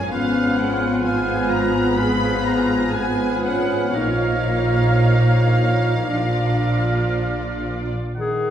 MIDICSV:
0, 0, Header, 1, 10, 480
1, 0, Start_track
1, 0, Tempo, 924499
1, 56, Time_signature, 4, 2, 24, 8
1, 1018, Tempo, 970874
1, 1498, Tempo, 1018676
1, 1978, Tempo, 1067616
1, 3418, Tempo, 1003344
1, 4064, End_track
2, 0, Start_track
2, 0, Title_t, "Flute"
2, 0, Program_c, 0, 73
2, 66, Note_on_c, 0, 89, 50
2, 519, Note_off_c, 0, 89, 0
2, 538, Note_on_c, 0, 89, 54
2, 1009, Note_off_c, 0, 89, 0
2, 1022, Note_on_c, 0, 89, 60
2, 1490, Note_off_c, 0, 89, 0
2, 1498, Note_on_c, 0, 89, 48
2, 1968, Note_off_c, 0, 89, 0
2, 1982, Note_on_c, 0, 89, 48
2, 2930, Note_off_c, 0, 89, 0
2, 2948, Note_on_c, 0, 89, 47
2, 3731, Note_off_c, 0, 89, 0
2, 3905, Note_on_c, 0, 82, 50
2, 4064, Note_off_c, 0, 82, 0
2, 4064, End_track
3, 0, Start_track
3, 0, Title_t, "Violin section"
3, 0, Program_c, 1, 48
3, 0, Note_on_c, 1, 80, 72
3, 52, Note_on_c, 1, 77, 68
3, 57, Note_off_c, 1, 80, 0
3, 287, Note_off_c, 1, 77, 0
3, 296, Note_on_c, 1, 78, 65
3, 535, Note_off_c, 1, 78, 0
3, 539, Note_on_c, 1, 80, 66
3, 772, Note_off_c, 1, 80, 0
3, 776, Note_on_c, 1, 82, 67
3, 1015, Note_on_c, 1, 83, 77
3, 1018, Note_off_c, 1, 82, 0
3, 1254, Note_off_c, 1, 83, 0
3, 1255, Note_on_c, 1, 82, 66
3, 1486, Note_on_c, 1, 80, 69
3, 1497, Note_off_c, 1, 82, 0
3, 1727, Note_off_c, 1, 80, 0
3, 1735, Note_on_c, 1, 78, 61
3, 1973, Note_off_c, 1, 78, 0
3, 1973, Note_on_c, 1, 77, 65
3, 3667, Note_off_c, 1, 77, 0
3, 4064, End_track
4, 0, Start_track
4, 0, Title_t, "Oboe"
4, 0, Program_c, 2, 68
4, 57, Note_on_c, 2, 71, 46
4, 514, Note_off_c, 2, 71, 0
4, 538, Note_on_c, 2, 71, 56
4, 1009, Note_off_c, 2, 71, 0
4, 1017, Note_on_c, 2, 71, 56
4, 1487, Note_off_c, 2, 71, 0
4, 1492, Note_on_c, 2, 71, 49
4, 1975, Note_on_c, 2, 70, 45
4, 1982, Note_off_c, 2, 71, 0
4, 2930, Note_off_c, 2, 70, 0
4, 2932, Note_on_c, 2, 70, 46
4, 3722, Note_off_c, 2, 70, 0
4, 3897, Note_on_c, 2, 78, 44
4, 4064, Note_off_c, 2, 78, 0
4, 4064, End_track
5, 0, Start_track
5, 0, Title_t, "Violin section"
5, 0, Program_c, 3, 48
5, 57, Note_on_c, 3, 68, 49
5, 58, Note_on_c, 3, 65, 51
5, 534, Note_off_c, 3, 68, 0
5, 540, Note_on_c, 3, 68, 52
5, 1016, Note_off_c, 3, 65, 0
5, 1022, Note_on_c, 3, 65, 54
5, 1481, Note_off_c, 3, 68, 0
5, 1490, Note_off_c, 3, 65, 0
5, 1509, Note_on_c, 3, 71, 49
5, 1511, Note_on_c, 3, 68, 51
5, 1978, Note_on_c, 3, 73, 46
5, 1981, Note_on_c, 3, 63, 45
5, 1983, Note_off_c, 3, 71, 0
5, 1984, Note_off_c, 3, 68, 0
5, 2927, Note_off_c, 3, 73, 0
5, 2942, Note_on_c, 3, 74, 45
5, 2947, Note_off_c, 3, 63, 0
5, 2947, Note_on_c, 3, 65, 42
5, 3789, Note_off_c, 3, 74, 0
5, 3791, Note_off_c, 3, 65, 0
5, 4064, End_track
6, 0, Start_track
6, 0, Title_t, "Viola section"
6, 0, Program_c, 4, 48
6, 0, Note_on_c, 4, 61, 50
6, 516, Note_off_c, 4, 61, 0
6, 537, Note_on_c, 4, 59, 53
6, 537, Note_on_c, 4, 65, 51
6, 1018, Note_off_c, 4, 65, 0
6, 1018, Note_on_c, 4, 68, 47
6, 1497, Note_off_c, 4, 59, 0
6, 1497, Note_off_c, 4, 68, 0
6, 1501, Note_on_c, 4, 65, 52
6, 1503, Note_on_c, 4, 59, 46
6, 1970, Note_off_c, 4, 59, 0
6, 1971, Note_off_c, 4, 65, 0
6, 1976, Note_on_c, 4, 65, 41
6, 1977, Note_on_c, 4, 58, 43
6, 2927, Note_off_c, 4, 65, 0
6, 2945, Note_off_c, 4, 58, 0
6, 2948, Note_on_c, 4, 53, 41
6, 2949, Note_on_c, 4, 62, 40
6, 3809, Note_off_c, 4, 53, 0
6, 3810, Note_off_c, 4, 62, 0
6, 4064, End_track
7, 0, Start_track
7, 0, Title_t, "Clarinet"
7, 0, Program_c, 5, 71
7, 53, Note_on_c, 5, 59, 59
7, 512, Note_off_c, 5, 59, 0
7, 538, Note_on_c, 5, 59, 60
7, 1009, Note_off_c, 5, 59, 0
7, 1027, Note_on_c, 5, 59, 53
7, 1492, Note_off_c, 5, 59, 0
7, 1503, Note_on_c, 5, 59, 51
7, 1980, Note_on_c, 5, 63, 52
7, 1987, Note_off_c, 5, 59, 0
7, 2949, Note_on_c, 5, 62, 45
7, 2956, Note_off_c, 5, 63, 0
7, 3748, Note_off_c, 5, 62, 0
7, 3914, Note_on_c, 5, 68, 76
7, 4064, Note_off_c, 5, 68, 0
7, 4064, End_track
8, 0, Start_track
8, 0, Title_t, "French horn section"
8, 0, Program_c, 6, 60
8, 57, Note_on_c, 6, 53, 50
8, 59, Note_on_c, 6, 59, 47
8, 526, Note_off_c, 6, 53, 0
8, 531, Note_off_c, 6, 59, 0
8, 535, Note_on_c, 6, 53, 52
8, 537, Note_on_c, 6, 59, 50
8, 1007, Note_off_c, 6, 53, 0
8, 1009, Note_off_c, 6, 59, 0
8, 1023, Note_on_c, 6, 59, 47
8, 1024, Note_on_c, 6, 53, 51
8, 1491, Note_off_c, 6, 53, 0
8, 1491, Note_off_c, 6, 59, 0
8, 1503, Note_on_c, 6, 59, 42
8, 1504, Note_on_c, 6, 53, 47
8, 1730, Note_off_c, 6, 59, 0
8, 1735, Note_on_c, 6, 61, 46
8, 1970, Note_off_c, 6, 53, 0
8, 1978, Note_off_c, 6, 61, 0
8, 1980, Note_on_c, 6, 53, 46
8, 1982, Note_on_c, 6, 63, 46
8, 2928, Note_off_c, 6, 53, 0
8, 2938, Note_on_c, 6, 53, 40
8, 2938, Note_on_c, 6, 62, 37
8, 2948, Note_off_c, 6, 63, 0
8, 3725, Note_off_c, 6, 53, 0
8, 3742, Note_off_c, 6, 62, 0
8, 3902, Note_on_c, 6, 51, 48
8, 4064, Note_off_c, 6, 51, 0
8, 4064, End_track
9, 0, Start_track
9, 0, Title_t, "Cello section"
9, 0, Program_c, 7, 48
9, 54, Note_on_c, 7, 44, 50
9, 1969, Note_on_c, 7, 46, 46
9, 1976, Note_off_c, 7, 44, 0
9, 2932, Note_off_c, 7, 46, 0
9, 2937, Note_on_c, 7, 46, 47
9, 3786, Note_off_c, 7, 46, 0
9, 4064, End_track
10, 0, Start_track
10, 0, Title_t, "Double bass section"
10, 0, Program_c, 8, 48
10, 57, Note_on_c, 8, 32, 57
10, 1977, Note_off_c, 8, 32, 0
10, 1982, Note_on_c, 8, 34, 50
10, 2939, Note_off_c, 8, 34, 0
10, 2944, Note_on_c, 8, 34, 49
10, 3790, Note_off_c, 8, 34, 0
10, 4064, End_track
0, 0, End_of_file